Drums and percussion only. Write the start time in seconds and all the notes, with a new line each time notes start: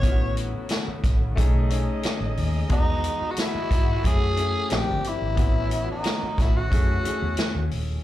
0.03 kick, closed hi-hat
0.37 closed hi-hat
0.69 snare, closed hi-hat
1.04 kick, snare, closed hi-hat
1.37 kick, closed hi-hat
1.70 closed hi-hat
2.03 snare, closed hi-hat
2.37 open hi-hat
2.69 kick, closed hi-hat
3.04 closed hi-hat
3.36 snare, closed hi-hat
3.71 kick, closed hi-hat
4.04 kick, closed hi-hat
4.37 closed hi-hat
4.70 snare, closed hi-hat
5.04 closed hi-hat
5.37 kick, closed hi-hat
5.71 closed hi-hat
6.04 snare, closed hi-hat
6.38 kick, snare, closed hi-hat
6.72 kick, closed hi-hat
7.05 closed hi-hat
7.37 snare, closed hi-hat
7.71 open hi-hat